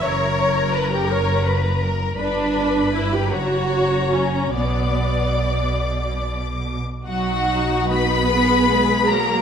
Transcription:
<<
  \new Staff \with { instrumentName = "Violin section" } { \time 6/8 \key b \minor \tempo 4. = 51 ais''2. | b''4. ais''4. | d'''2~ d'''8. r16 | \key b \major fis''4 b''4. ais''8 | }
  \new Staff \with { instrumentName = "Violin section" } { \time 6/8 \key b \minor ais'4. cis''8 b'8 ais'8 | b'4. cis''4. | d''2~ d''16 r8. | \key b \major fis'4 b'4. ais'8 | }
  \new Staff \with { instrumentName = "Viola section" } { \time 6/8 \key b \minor << { cis''4 b'16 g'16 ais'8 r4 | d'4 e'16 g'16 fis'4 cis'8 | b4. r4. | \key b \major fis'4. gis'4. | } \\ { r2. | r2. | r2. | dis'4. b8 gis8 fis8 | } >> }
  \new Staff \with { instrumentName = "Cello section" } { \clef bass \time 6/8 \key b \minor fis,2. | g,4. fis,4. | b,2~ b,8. r16 | \key b \major fis4 b4. ais8 | }
  \new Staff \with { instrumentName = "Double bass section" } { \clef bass \time 6/8 \key b \minor fis,,2. | g,,4. fis,,4. | b,,2~ b,,8. r16 | \key b \major b,,2. | }
>>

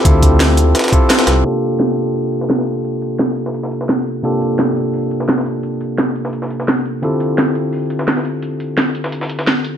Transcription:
<<
  \new Staff \with { instrumentName = "Tine electric piano" } { \time 4/4 \key c \mixolydian \tempo 4 = 172 <c' e' f' g' a'>2~ <c' e' f' g' a'>8 <c' e' f' g' a'>4. | <c bes d' f' g' a'>1~ | <c bes d' f' g' a'>1 | <c bes d' f' g' a'>1~ |
<c bes d' f' g' a'>1 | <d c' e' f' g' a'>1~ | <d c' e' f' g' a'>1 | }
  \new Staff \with { instrumentName = "Detuned saw bass" } { \clef bass \time 4/4 \key c \mixolydian d,2 r4. c,8 | r1 | r1 | r1 |
r1 | r1 | r1 | }
  \new DrumStaff \with { instrumentName = "Drums" } \drummode { \time 4/4 <hh bd>8 <hh bd>8 <hh sn>8 hh8 <hh sn>32 <hh sn>32 <hh sn>32 <hh sn>32 <hh bd>8 <hh sn>16 <hh sn>16 <hh sn>8 | <cymc hh>8 hh8 sn16 hh16 hh8 hho8 hh16 sn16 <hh sn>16 sn16 hh8 | hh8 hh8 <hh sn>8 hh16 sn16 hh16 sn16 hh16 sn16 <hh sn>16 hh16 hh8 | hh8 hh8 <hh sn>16 hh16 hh8 hho8 hh16 sn16 <hh sn>16 sn16 hh8 |
hh8 hh8 <hh sn>8 hh16 sn16 hh16 sn16 hh16 sn16 <hh sn>16 hh16 hh8 | hh8 hh8 <hh sn>16 hh16 hh8 hho8 hh16 sn16 <hh sn>16 sn16 hh8 | hh8 hh8 <hh sn>8 hh16 sn16 hh16 sn16 hh16 sn16 <hh sn>16 hh16 hh8 | }
>>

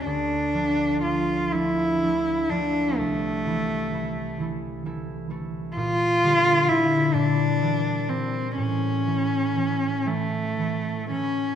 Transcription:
<<
  \new Staff \with { instrumentName = "Cello" } { \time 6/8 \key d \minor \tempo 4. = 41 d'4 f'8 e'4 d'8 | a4. r4. | f'4 e'8 d'4 c'8 | cis'4. a4 cis'8 | }
  \new Staff \with { instrumentName = "Harp" } { \time 6/8 \key d \minor <d, a>8 <f a d'>8 <f a d'>8 <f a d'>8 <f a d'>8 <f a d'>8 | c,8 <e a e'>8 <e a e'>8 <e a e'>8 <e a e'>8 <e a e'>8 | bes,8 <d g g'>8 <d g g'>8 bes,8 <e g e'>8 <e g e'>8 | a,8 <e a e'>8 <e a e'>8 <e a e'>8 <e a e'>8 <e a e'>8 | }
>>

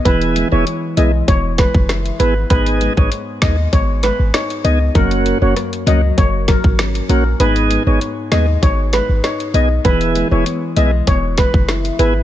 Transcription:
<<
  \new Staff \with { instrumentName = "Steel pan" } { \time 4/4 \key gis \minor \tempo 4 = 98 b'16 r8 cis''16 r8 dis''16 r16 cis''16 r16 b'16 r8. b'16 r16 | b'16 r8 cis''16 r8 dis''16 r16 cis''16 r16 b'16 r16 cis''16 r16 dis''16 r16 | ais'16 r8 cis''16 r8 dis''16 r16 cis''16 r16 ais'16 r8. ais'16 r16 | b'16 r8 cis''16 r8 dis''16 r16 cis''16 r16 b'16 r16 cis''16 r16 dis''16 r16 |
b'16 r8 cis''16 r8 dis''16 r16 cis''16 r16 b'16 r8. b'16 r16 | }
  \new Staff \with { instrumentName = "Tonewheel organ" } { \time 4/4 \key gis \minor <b e' gis'>8. <b e' gis'>16 r8 <b e' gis'>16 r4. r16 <b e' gis'>16 r16 | <b dis' gis'>8. <b dis' gis'>16 r8 <b dis' gis'>16 r4. r16 <b dis' gis'>16 r16 | <ais cis' fis'>8. <ais cis' fis'>16 r8 <ais cis' fis'>16 r4. r16 <ais cis' fis'>16 r16 | <b dis' gis'>8. <b dis' gis'>16 r8 <b dis' gis'>16 r4. r16 <b dis' gis'>16 r16 |
<b e' gis'>8. <b e' gis'>16 r8 <b e' gis'>16 r4. r16 <b e' gis'>16 r16 | }
  \new Staff \with { instrumentName = "Nylon-string guitar" } { \time 4/4 \key gis \minor e8 gis8 b8 gis8 b8 gis8 e'8 b8 | gis,8 gis8 b8 gis8 b8 gis8 dis'8 b8 | fis,8 fis8 ais8 fis8 ais8 fis8 cis'8 ais8 | gis,8 gis8 b8 gis8 b8 gis8 dis'8 b8 |
e8 gis8 b8 gis8 b8 gis8 e'8 b8 | }
  \new Staff \with { instrumentName = "808-style bass" } { \clef bass \time 4/4 \key gis \minor e,,8. e,,16 r8 b,,8 e,,8. fis,,8. gis,,8 | gis,,8. gis,,16 r8 dis,8 gis,,8. gis,,16 r8 cis,8 | fis,,8. fis,,16 r8 cis,8 fis,,8. gis,,8. ais,,8 | gis,,8. gis,,16 r8 dis,8 gis,,8. gis,,16 r8 b,,8 |
e,,8. e,,16 r8 b,,8 e,,8. fis,,8. gis,,8 | }
  \new DrumStaff \with { instrumentName = "Drums" } \drummode { \time 4/4 <hh bd>16 hh16 hh8 hh8 hh8 <hh bd>8 <hh bd sn>16 bd16 <hh ss sn>16 hh16 hh8 | <hh bd>16 hh16 hh16 bd16 hh8 <hh bd sn>8 <hh bd>8 <hh sn>8 <hh ss sn>16 hh16 hh8 | <hh bd>16 hh16 hh8 <hh ss>16 hh16 hh8 <hh bd>8 <hh bd sn>16 bd16 <hh ss sn>16 hh16 hh8 | hh16 hh16 hh8 hh8 <hh sn>8 <hh bd>8 <hh sn>8 <hh ss sn>16 hh16 hh8 |
<hh bd>16 hh16 hh8 hh8 hh8 <hh bd>8 <hh bd sn>16 bd16 <hh ss sn>16 hh16 hh8 | }
>>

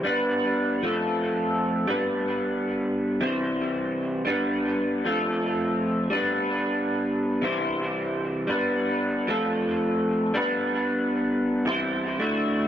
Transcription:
\new Staff \with { instrumentName = "Clean electric guitar" } { \time 4/4 \key g \mixolydian \tempo 4 = 114 <g b d' b'>4. <f a c' f' a'>2 <g b d' b'>8~ | <g b d' b'>2 <c e g c' e' c''>2 | <g b d' b'>4. <f a c' f' a'>2 <g b d' b'>8~ | <g b d' b'>2 <c e g c' e' c''>2 |
<g b d' b'>4. <f a c' f' a'>2 <g b d' b'>8~ | <g b d' b'>2 <c e g c' e' c''>4 <d a d' e' fis'>4 | }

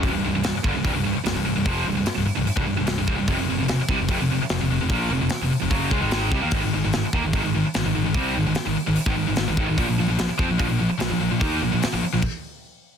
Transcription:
<<
  \new Staff \with { instrumentName = "Distorted electric guitar" } { \clef bass \time 4/4 \key c \minor \tempo 4 = 148 <c, g,>16 <c, g,>16 <c, g,>16 <c, g,>16 <c, g,>16 r16 <g, d>16 <c, g,>16 <c, g,>16 <c, g,>16 <c, g,>16 r16 <c, g,>16 <c, g,>16 <c, g,>16 <c, g,>16 | <f, c f>8 <c, g,>16 <c, g,>16 r16 <c, g,>16 r16 <c, g,>16 r16 <c, g,>16 <c, g,>16 <c, g,>16 <c, g,>16 <c, g,>16 <des, aes,>16 <c, g,>16 | <f, c>16 <f, c>16 <f, c>16 <f, c>16 <f, c>16 r16 <c g>16 <f, c>16 <f, c>16 <f, c>16 <f, c>16 r16 <f, c>16 <f, c>16 <f, c>16 <f, c>16 | <bes, f bes>8 <f, c>16 <f, c>16 r16 <f, c>16 r16 <f, c>16 <fis, des fis>8 <des aes>16 <aes, ees aes>8. <c g>16 <ees bes>16 |
<aes, ees>16 <aes, ees>16 <aes, ees>16 <aes, ees>16 <aes, ees>16 r16 <ees bes>16 <aes, ees>16 <aes, ees>16 <aes, ees>16 <aes, ees>16 r16 <aes, ees>16 <aes, ees>16 <aes, ees>16 <aes, ees>16 | <c g c'>8 <aes, ees>16 <aes, ees>16 r16 <aes, ees>16 r16 <aes, ees>16 r16 <aes, ees>16 <aes, ees>16 <aes, ees>16 <aes, ees>16 <aes, ees>16 <aes, ees>16 <aes, ees>16 | <bes, f>16 <bes, f>16 <bes, f>16 <bes, f>16 <bes, f>16 r16 <f c'>16 <bes, f>16 <bes, f>16 <bes, f>16 <bes, f>16 r16 <bes, f>16 <bes, f>16 <bes, f>16 <bes, f>16 | <ees bes ees'>8 <bes, f>16 <bes, f>16 r16 <bes, f>16 r16 <bes, f>16 r2 | }
  \new Staff \with { instrumentName = "Distorted electric guitar" } { \clef bass \time 4/4 \key c \minor <c, g,>16 <c, g,>16 <c, g,>16 <c, g,>16 <c, g,>16 r16 <g, d>16 <c, g,>16 <c, g,>16 <c, g,>16 <c, g,>16 r16 <c, g,>16 <c, g,>16 <c, g,>16 <c, g,>16 | <f, c f>8 <c, g,>16 <c, g,>16 r16 <c, g,>16 r16 <c, g,>16 r16 <c, g,>16 <c, g,>16 <c, g,>16 <c, g,>16 <c, g,>16 <des, aes,>16 <c, g,>16 | <f, c>16 <f, c>16 <f, c>16 <f, c>16 <f, c>16 r16 <c g>16 <f, c>16 <f, c>16 <f, c>16 <f, c>16 r16 <f, c>16 <f, c>16 <f, c>16 <f, c>16 | <bes, f bes>8 <f, c>16 <f, c>16 r16 <f, c>16 r16 <f, c>16 <fis, des fis>8 <des aes>16 <aes, ees aes>8. <c g>16 <ees bes>16 |
<aes, ees>16 <aes, ees>16 <aes, ees>16 <aes, ees>16 <aes, ees>16 r16 <ees bes>16 <aes, ees>16 <aes, ees>16 <aes, ees>16 <aes, ees>16 r16 <aes, ees>16 <aes, ees>16 <aes, ees>16 <aes, ees>16 | <c g c'>8 <aes, ees>16 <aes, ees>16 r16 <aes, ees>16 r16 <aes, ees>16 r16 <aes, ees>16 <aes, ees>16 <aes, ees>16 <aes, ees>16 <aes, ees>16 <aes, ees>16 <aes, ees>16 | <bes, f>16 <bes, f>16 <bes, f>16 <bes, f>16 <bes, f>16 r16 <f c'>16 <bes, f>16 <bes, f>16 <bes, f>16 <bes, f>16 r16 <bes, f>16 <bes, f>16 <bes, f>16 <bes, f>16 | <ees bes ees'>8 <bes, f>16 <bes, f>16 r16 <bes, f>16 r16 <bes, f>16 r2 | }
  \new Staff \with { instrumentName = "Picked electric bass" } { \clef bass \time 4/4 \key c \minor c,,16 c,,16 c,,16 c,,16 c,,16 r16 g,,16 c,,16 c,,16 c,,16 c,,16 r16 c,,16 c,,16 c,,16 c,,16 | f,,8 c,,16 c,,16 r16 c,,16 r16 c,,16 r16 c,,16 c,,16 c,,16 c,,16 c,,16 des,,16 c,,16 | f,,16 f,,16 f,,16 f,,16 f,,16 r16 c,16 f,,16 f,,16 f,,16 f,,16 r16 f,,16 f,,16 f,,16 f,,16 | bes,,8 f,,16 f,,16 r16 f,,16 r16 f,,16 fis,,8 des,16 aes,,8. c,16 ees,16 |
aes,,16 aes,,16 aes,,16 aes,,16 aes,,16 r16 ees,16 aes,,16 aes,,16 aes,,16 aes,,16 r16 aes,,16 aes,,16 aes,,16 aes,,16 | c,8 aes,,16 aes,,16 r16 aes,,16 r16 aes,,16 r16 aes,,16 aes,,16 aes,,16 aes,,16 aes,,16 aes,,16 aes,,16 | bes,,16 bes,,16 bes,,16 bes,,16 bes,,16 r16 f,16 bes,,16 bes,,16 bes,,16 bes,,16 r16 bes,,16 bes,,16 bes,,16 bes,,16 | ees,8 bes,,16 bes,,16 r16 bes,,16 r16 bes,,16 r2 | }
  \new DrumStaff \with { instrumentName = "Drums" } \drummode { \time 4/4 <hho bd>4 <hho sn>8 bd8 <hho bd>4 <hho sn>4 | <hho bd>4 <hho sn>4 hho16 bd8. <hho sn>8 bd8 | <hho bd>4 <hho sn>8 bd8 <hho bd>4 <hho sn>4 | <hho bd>4 <hho sn>4 <hho bd>8 bd8 <hho sn>8 bd8 |
<hho bd>4 <hho sn>8 bd8 <hho bd>4 <hho sn>4 | <hho bd>4 <hho sn>4 hho16 bd8. <hho sn>8 bd8 | <hho bd>4 <hho sn>8 bd8 <hho bd>4 <hho sn>4 | <hho bd>4 <hho sn>4 <cymc bd>4 r4 | }
>>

